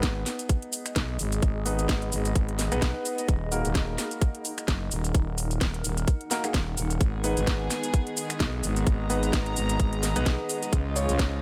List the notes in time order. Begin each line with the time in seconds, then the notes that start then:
Already playing: G#1 B3 D#4 G#4 B4 D#5
0.03 kick, snare, closed hi-hat, shaker
0.26 finger snap, snare, open hi-hat, shaker
0.39 closed hi-hat, shaker
0.49 kick, closed hi-hat, shaker
0.62 closed hi-hat
0.70 B5, open hi-hat, shaker
0.86 finger snap, closed hi-hat, shaker
0.96 B1, kick, snare, closed hi-hat, shaker
1.19 G#1, open hi-hat, shaker
1.32 closed hi-hat, shaker
1.42 G#1, kick, closed hi-hat, shaker
1.66 B3 D#4 G#4 B4, open hi-hat, shaker
1.79 closed hi-hat, shaker
1.89 G#1, kick, snare, closed hi-hat, shaker
2.02 closed hi-hat
2.12 G#1, open hi-hat, shaker
2.25 closed hi-hat, shaker
2.35 G#1, kick, closed hi-hat, shaker
2.49 closed hi-hat
2.59 snare, open hi-hat, shaker
2.72 B1 B3 D#4 G#4 B4, finger snap, closed hi-hat, shaker
2.82 kick, snare, closed hi-hat, shaker
3.05 open hi-hat, shaker
3.18 closed hi-hat, shaker
3.29 D#1 D#4, kick, closed hi-hat, shaker
3.52 A#3 D#4 F#4 A#4, open hi-hat, shaker
3.65 D#1, closed hi-hat, shaker
3.75 kick, snare, closed hi-hat, shaker
3.98 finger snap, snare, open hi-hat, shaker
4.03 A#4
4.11 closed hi-hat, shaker
4.22 kick, closed hi-hat, shaker
4.35 closed hi-hat
4.45 open hi-hat, shaker
4.58 finger snap, closed hi-hat, shaker
4.68 F#1, kick, snare, closed hi-hat, shaker
4.86 F#5
4.91 D#1, open hi-hat, shaker
5.04 closed hi-hat, shaker
5.15 D#1, kick, closed hi-hat, shaker
5.38 open hi-hat, shaker
5.51 closed hi-hat, shaker
5.61 D#1, kick, snare, closed hi-hat, shaker
5.74 closed hi-hat
5.84 D#1, open hi-hat, shaker
5.97 closed hi-hat, shaker
6.08 kick, closed hi-hat, shaker
6.21 closed hi-hat
6.31 A#3 D#4 F#4 A#4, snare, open hi-hat, shaker
6.44 A#3 D#4 F#4 G#4, finger snap, closed hi-hat, shaker
6.54 D#1, kick, snare, closed hi-hat, shaker
6.77 D#1, open hi-hat, shaker
6.90 closed hi-hat, shaker
7.01 G#1 D#3 G#3 B3 G#4, kick, closed hi-hat, shaker
7.24 B3 D#4 G#4 B4, open hi-hat, shaker
7.37 G#1, closed hi-hat, shaker
7.47 kick, snare, closed hi-hat, shaker
7.70 finger snap, snare, open hi-hat, shaker
7.82 D#5, closed hi-hat, shaker
7.94 kick, closed hi-hat, shaker
8.07 closed hi-hat
8.17 open hi-hat, shaker
8.30 finger snap, closed hi-hat, shaker
8.40 B1, kick, snare, closed hi-hat, shaker
8.63 G#1, open hi-hat, shaker
8.76 closed hi-hat, shaker
8.87 G#1 A#5, kick, closed hi-hat, shaker
9.10 B3 D#4 G#4 B4, open hi-hat, shaker
9.23 closed hi-hat, shaker
9.33 G#1, kick, snare, closed hi-hat, shaker
9.46 closed hi-hat
9.56 G#1, open hi-hat, shaker
9.69 closed hi-hat, shaker
9.80 G#1, kick, closed hi-hat, shaker
9.93 closed hi-hat
10.03 snare, open hi-hat, shaker
10.16 B1 B3 D#4 G#4 B4, finger snap, closed hi-hat, shaker
10.26 kick, snare, closed hi-hat, shaker
10.49 open hi-hat, shaker
10.63 closed hi-hat, shaker
10.73 C#2 C#3 F3 C#4 F4, kick, closed hi-hat, shaker
10.96 C#4 F4 G#4 C#5, open hi-hat, shaker
11.09 C#2, closed hi-hat, shaker
11.13 F5
11.19 kick, snare, closed hi-hat, shaker